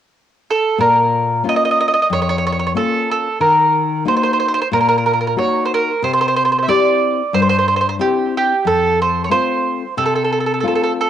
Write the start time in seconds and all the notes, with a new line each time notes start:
0.50 A4
0.78 A#2 A#4
1.44 A#3 C#4 F4
1.49 D#5
1.56 D#5
1.65 D#5
1.71 D#5
1.81 D#5
1.88 D#5
1.94 D#5
2.02 D#5
2.10 F2 C#5
2.22 C#5
2.29 C#5
2.38 C#5
2.47 C#5
2.52 C#5
2.59 C#5
2.67 C#5
2.75 A#3 C#4 F4 A4
3.11 A4
3.40 D#3 A#4
4.05 A#3 D#4 F#4 C5
4.17 C5
4.23 C5
4.33 C5
4.40 C5
4.48 C5
4.54 C5
4.62 C5
4.72 A#2 A#4
4.80 A#4
4.89 A#4
4.98 A#4
5.06 A#4
5.13 A#4
5.21 A#4
5.27 A#4
5.36 A#3 D#4 F#4 C#5
5.66 C5
5.74 A#4
6.02 C3 C5
6.13 C5
6.21 C5
6.28 C5
6.36 C5
6.45 C5
6.52 C5
6.58 C5
6.63 E5
6.68 C4 E4 G4 D5
7.33 G2 C5
7.42 C5
7.49 C5
7.58 C5
7.68 C5
7.76 C5
7.81 C5
7.89 C5
7.99 C4 E4 G4
8.37 G4
8.65 F2 A4
9.02 C5
9.24 C#5
9.30 A3 C4 F4 C5
9.97 C3 A4
10.06 A4
10.15 A4
10.24 A4
10.32 A4
10.40 A4
10.46 A4
10.54 A4
10.60 A3 C4 F4 A4
10.68 A4
10.75 A4
10.83 A4
11.01 A4